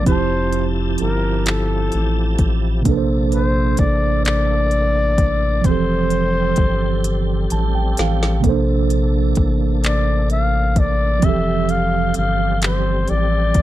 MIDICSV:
0, 0, Header, 1, 6, 480
1, 0, Start_track
1, 0, Tempo, 930233
1, 32, Time_signature, 6, 3, 24, 8
1, 7028, End_track
2, 0, Start_track
2, 0, Title_t, "Flugelhorn"
2, 0, Program_c, 0, 56
2, 36, Note_on_c, 0, 72, 106
2, 354, Note_off_c, 0, 72, 0
2, 519, Note_on_c, 0, 70, 83
2, 759, Note_on_c, 0, 69, 77
2, 767, Note_off_c, 0, 70, 0
2, 1296, Note_off_c, 0, 69, 0
2, 1720, Note_on_c, 0, 72, 92
2, 1955, Note_on_c, 0, 74, 102
2, 1963, Note_off_c, 0, 72, 0
2, 2193, Note_off_c, 0, 74, 0
2, 2196, Note_on_c, 0, 74, 113
2, 2920, Note_on_c, 0, 72, 106
2, 2927, Note_off_c, 0, 74, 0
2, 3876, Note_off_c, 0, 72, 0
2, 5082, Note_on_c, 0, 74, 93
2, 5300, Note_off_c, 0, 74, 0
2, 5325, Note_on_c, 0, 77, 93
2, 5567, Note_on_c, 0, 74, 97
2, 5575, Note_off_c, 0, 77, 0
2, 5803, Note_on_c, 0, 76, 114
2, 5811, Note_off_c, 0, 74, 0
2, 6042, Note_on_c, 0, 77, 98
2, 6049, Note_off_c, 0, 76, 0
2, 6277, Note_off_c, 0, 77, 0
2, 6283, Note_on_c, 0, 77, 93
2, 6501, Note_off_c, 0, 77, 0
2, 6530, Note_on_c, 0, 72, 88
2, 6759, Note_on_c, 0, 74, 99
2, 6766, Note_off_c, 0, 72, 0
2, 7028, Note_off_c, 0, 74, 0
2, 7028, End_track
3, 0, Start_track
3, 0, Title_t, "Tine electric piano"
3, 0, Program_c, 1, 4
3, 0, Control_c, 1, 64, 127
3, 13, Note_on_c, 1, 53, 62
3, 26, Note_on_c, 1, 60, 57
3, 37, Note_on_c, 1, 64, 57
3, 39, Control_c, 1, 64, 0
3, 49, Note_on_c, 1, 67, 57
3, 61, Note_on_c, 1, 81, 66
3, 139, Control_c, 1, 64, 127
3, 1442, Note_off_c, 1, 53, 0
3, 1448, Note_off_c, 1, 60, 0
3, 1454, Note_off_c, 1, 64, 0
3, 1455, Note_on_c, 1, 48, 75
3, 1460, Note_off_c, 1, 67, 0
3, 1466, Note_off_c, 1, 81, 0
3, 1466, Note_on_c, 1, 58, 71
3, 1477, Note_on_c, 1, 62, 69
3, 1478, Control_c, 1, 64, 0
3, 1490, Note_on_c, 1, 69, 72
3, 1502, Note_on_c, 1, 71, 65
3, 1520, Note_off_c, 1, 71, 0
3, 1534, Note_on_c, 1, 72, 83
3, 1567, Control_c, 1, 64, 127
3, 2883, Note_off_c, 1, 48, 0
3, 2888, Note_off_c, 1, 58, 0
3, 2894, Note_off_c, 1, 62, 0
3, 2897, Note_on_c, 1, 53, 65
3, 2900, Note_off_c, 1, 69, 0
3, 2909, Note_on_c, 1, 60, 60
3, 2918, Control_c, 1, 64, 0
3, 2921, Note_on_c, 1, 52, 59
3, 2922, Note_off_c, 1, 72, 0
3, 2932, Note_on_c, 1, 67, 57
3, 2944, Note_on_c, 1, 69, 69
3, 3021, Control_c, 1, 64, 127
3, 3880, Note_on_c, 1, 81, 66
3, 3988, Note_off_c, 1, 81, 0
3, 3999, Note_on_c, 1, 79, 62
3, 4107, Note_off_c, 1, 79, 0
3, 4122, Note_on_c, 1, 77, 67
3, 4324, Note_off_c, 1, 53, 0
3, 4330, Note_off_c, 1, 60, 0
3, 4334, Note_on_c, 1, 48, 74
3, 4336, Note_off_c, 1, 52, 0
3, 4341, Note_off_c, 1, 67, 0
3, 4341, Note_off_c, 1, 77, 0
3, 4346, Note_on_c, 1, 58, 67
3, 4347, Note_off_c, 1, 69, 0
3, 4358, Note_on_c, 1, 60, 53
3, 4359, Control_c, 1, 64, 0
3, 4368, Note_on_c, 1, 69, 69
3, 4381, Note_on_c, 1, 72, 82
3, 4388, Note_off_c, 1, 60, 0
3, 4391, Note_on_c, 1, 62, 71
3, 4455, Control_c, 1, 64, 127
3, 5762, Note_off_c, 1, 48, 0
3, 5768, Note_off_c, 1, 58, 0
3, 5778, Note_on_c, 1, 53, 64
3, 5779, Note_off_c, 1, 69, 0
3, 5786, Note_off_c, 1, 72, 0
3, 5791, Note_off_c, 1, 62, 0
3, 5791, Note_on_c, 1, 60, 57
3, 5798, Control_c, 1, 64, 0
3, 5803, Note_on_c, 1, 52, 60
3, 5813, Note_on_c, 1, 67, 55
3, 5825, Note_on_c, 1, 69, 69
3, 5878, Control_c, 1, 64, 127
3, 7028, Note_off_c, 1, 52, 0
3, 7028, Note_off_c, 1, 53, 0
3, 7028, Note_off_c, 1, 60, 0
3, 7028, Note_off_c, 1, 67, 0
3, 7028, Note_off_c, 1, 69, 0
3, 7028, End_track
4, 0, Start_track
4, 0, Title_t, "Tonewheel organ"
4, 0, Program_c, 2, 16
4, 33, Note_on_c, 2, 64, 57
4, 35, Note_on_c, 2, 81, 75
4, 36, Note_on_c, 2, 53, 64
4, 36, Note_on_c, 2, 67, 59
4, 1458, Note_off_c, 2, 64, 0
4, 1459, Note_off_c, 2, 81, 0
4, 1460, Note_off_c, 2, 53, 0
4, 1460, Note_off_c, 2, 67, 0
4, 1474, Note_on_c, 2, 58, 64
4, 1475, Note_on_c, 2, 62, 73
4, 1475, Note_on_c, 2, 69, 64
4, 2899, Note_off_c, 2, 58, 0
4, 2899, Note_off_c, 2, 62, 0
4, 2899, Note_off_c, 2, 69, 0
4, 2917, Note_on_c, 2, 67, 61
4, 2919, Note_on_c, 2, 69, 73
4, 2920, Note_on_c, 2, 55, 68
4, 2920, Note_on_c, 2, 60, 61
4, 4340, Note_off_c, 2, 67, 0
4, 4341, Note_off_c, 2, 69, 0
4, 4342, Note_off_c, 2, 55, 0
4, 4342, Note_off_c, 2, 60, 0
4, 4351, Note_on_c, 2, 58, 58
4, 4353, Note_on_c, 2, 62, 71
4, 4354, Note_on_c, 2, 69, 65
4, 5777, Note_off_c, 2, 58, 0
4, 5778, Note_off_c, 2, 62, 0
4, 5779, Note_off_c, 2, 69, 0
4, 5795, Note_on_c, 2, 60, 62
4, 5795, Note_on_c, 2, 69, 75
4, 5796, Note_on_c, 2, 55, 66
4, 5799, Note_on_c, 2, 67, 62
4, 7028, Note_off_c, 2, 55, 0
4, 7028, Note_off_c, 2, 60, 0
4, 7028, Note_off_c, 2, 67, 0
4, 7028, Note_off_c, 2, 69, 0
4, 7028, End_track
5, 0, Start_track
5, 0, Title_t, "Analog synth bass"
5, 0, Program_c, 3, 38
5, 39, Note_on_c, 3, 29, 102
5, 495, Note_off_c, 3, 29, 0
5, 525, Note_on_c, 3, 31, 87
5, 978, Note_off_c, 3, 31, 0
5, 1004, Note_on_c, 3, 33, 91
5, 1217, Note_off_c, 3, 33, 0
5, 1239, Note_on_c, 3, 33, 88
5, 1455, Note_off_c, 3, 33, 0
5, 1478, Note_on_c, 3, 34, 98
5, 1934, Note_off_c, 3, 34, 0
5, 1961, Note_on_c, 3, 33, 84
5, 2896, Note_off_c, 3, 33, 0
5, 2918, Note_on_c, 3, 29, 99
5, 3374, Note_off_c, 3, 29, 0
5, 3400, Note_on_c, 3, 31, 83
5, 3855, Note_off_c, 3, 31, 0
5, 3881, Note_on_c, 3, 33, 91
5, 4096, Note_off_c, 3, 33, 0
5, 4125, Note_on_c, 3, 33, 92
5, 4338, Note_off_c, 3, 33, 0
5, 4359, Note_on_c, 3, 34, 111
5, 4815, Note_off_c, 3, 34, 0
5, 4841, Note_on_c, 3, 33, 81
5, 5776, Note_off_c, 3, 33, 0
5, 5799, Note_on_c, 3, 29, 102
5, 6255, Note_off_c, 3, 29, 0
5, 6284, Note_on_c, 3, 31, 88
5, 6737, Note_off_c, 3, 31, 0
5, 6764, Note_on_c, 3, 33, 88
5, 6977, Note_off_c, 3, 33, 0
5, 6997, Note_on_c, 3, 33, 95
5, 7028, Note_off_c, 3, 33, 0
5, 7028, End_track
6, 0, Start_track
6, 0, Title_t, "Drums"
6, 33, Note_on_c, 9, 42, 68
6, 34, Note_on_c, 9, 36, 106
6, 85, Note_off_c, 9, 36, 0
6, 85, Note_off_c, 9, 42, 0
6, 271, Note_on_c, 9, 42, 55
6, 323, Note_off_c, 9, 42, 0
6, 505, Note_on_c, 9, 42, 46
6, 557, Note_off_c, 9, 42, 0
6, 753, Note_on_c, 9, 42, 72
6, 762, Note_on_c, 9, 39, 107
6, 804, Note_off_c, 9, 42, 0
6, 813, Note_off_c, 9, 39, 0
6, 990, Note_on_c, 9, 42, 49
6, 1042, Note_off_c, 9, 42, 0
6, 1231, Note_on_c, 9, 42, 51
6, 1232, Note_on_c, 9, 36, 94
6, 1282, Note_off_c, 9, 42, 0
6, 1284, Note_off_c, 9, 36, 0
6, 1472, Note_on_c, 9, 42, 72
6, 1473, Note_on_c, 9, 36, 99
6, 1524, Note_off_c, 9, 42, 0
6, 1525, Note_off_c, 9, 36, 0
6, 1713, Note_on_c, 9, 42, 53
6, 1765, Note_off_c, 9, 42, 0
6, 1946, Note_on_c, 9, 42, 47
6, 1955, Note_on_c, 9, 36, 93
6, 1998, Note_off_c, 9, 42, 0
6, 2006, Note_off_c, 9, 36, 0
6, 2194, Note_on_c, 9, 42, 73
6, 2203, Note_on_c, 9, 39, 106
6, 2246, Note_off_c, 9, 42, 0
6, 2255, Note_off_c, 9, 39, 0
6, 2431, Note_on_c, 9, 42, 47
6, 2482, Note_off_c, 9, 42, 0
6, 2673, Note_on_c, 9, 36, 90
6, 2673, Note_on_c, 9, 42, 55
6, 2725, Note_off_c, 9, 36, 0
6, 2725, Note_off_c, 9, 42, 0
6, 2912, Note_on_c, 9, 42, 69
6, 2913, Note_on_c, 9, 36, 105
6, 2963, Note_off_c, 9, 42, 0
6, 2964, Note_off_c, 9, 36, 0
6, 3150, Note_on_c, 9, 42, 54
6, 3201, Note_off_c, 9, 42, 0
6, 3385, Note_on_c, 9, 42, 49
6, 3394, Note_on_c, 9, 36, 95
6, 3436, Note_off_c, 9, 42, 0
6, 3445, Note_off_c, 9, 36, 0
6, 3634, Note_on_c, 9, 42, 76
6, 3686, Note_off_c, 9, 42, 0
6, 3872, Note_on_c, 9, 42, 49
6, 3923, Note_off_c, 9, 42, 0
6, 4114, Note_on_c, 9, 42, 53
6, 4124, Note_on_c, 9, 38, 88
6, 4166, Note_off_c, 9, 42, 0
6, 4176, Note_off_c, 9, 38, 0
6, 4245, Note_on_c, 9, 38, 90
6, 4297, Note_off_c, 9, 38, 0
6, 4354, Note_on_c, 9, 36, 105
6, 4354, Note_on_c, 9, 42, 69
6, 4405, Note_off_c, 9, 36, 0
6, 4405, Note_off_c, 9, 42, 0
6, 4594, Note_on_c, 9, 42, 57
6, 4645, Note_off_c, 9, 42, 0
6, 4827, Note_on_c, 9, 42, 47
6, 4836, Note_on_c, 9, 36, 92
6, 4878, Note_off_c, 9, 42, 0
6, 4887, Note_off_c, 9, 36, 0
6, 5076, Note_on_c, 9, 42, 69
6, 5085, Note_on_c, 9, 39, 110
6, 5127, Note_off_c, 9, 42, 0
6, 5136, Note_off_c, 9, 39, 0
6, 5313, Note_on_c, 9, 42, 51
6, 5365, Note_off_c, 9, 42, 0
6, 5552, Note_on_c, 9, 42, 54
6, 5553, Note_on_c, 9, 36, 95
6, 5604, Note_off_c, 9, 42, 0
6, 5605, Note_off_c, 9, 36, 0
6, 5791, Note_on_c, 9, 42, 70
6, 5793, Note_on_c, 9, 36, 105
6, 5842, Note_off_c, 9, 42, 0
6, 5845, Note_off_c, 9, 36, 0
6, 6031, Note_on_c, 9, 42, 54
6, 6083, Note_off_c, 9, 42, 0
6, 6265, Note_on_c, 9, 42, 46
6, 6317, Note_off_c, 9, 42, 0
6, 6510, Note_on_c, 9, 42, 70
6, 6519, Note_on_c, 9, 39, 110
6, 6562, Note_off_c, 9, 42, 0
6, 6571, Note_off_c, 9, 39, 0
6, 6747, Note_on_c, 9, 42, 51
6, 6798, Note_off_c, 9, 42, 0
6, 6988, Note_on_c, 9, 42, 52
6, 6991, Note_on_c, 9, 36, 91
6, 7028, Note_off_c, 9, 36, 0
6, 7028, Note_off_c, 9, 42, 0
6, 7028, End_track
0, 0, End_of_file